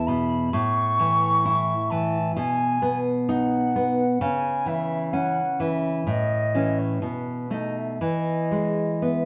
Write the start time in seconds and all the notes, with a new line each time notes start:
Already playing: E2 E4
0.07 B2 B5
0.53 A2 C#6
0.99 E3
1.45 E4
1.90 E3 A5
2.36 B2 G#5
2.82 B3
3.28 D#4 F#5
3.76 B3
4.21 C#3 G#5
4.66 E3 E5
5.13 C#4 F#5
5.60 E3 E5
6.07 A2 D#5
6.55 E3 C#4
6.79 C#5
7.02 B2 B4
7.50 A3 D#4 D#5
7.77 E5
8.01 E3 D#5
8.51 G#3
9.02 B3 E5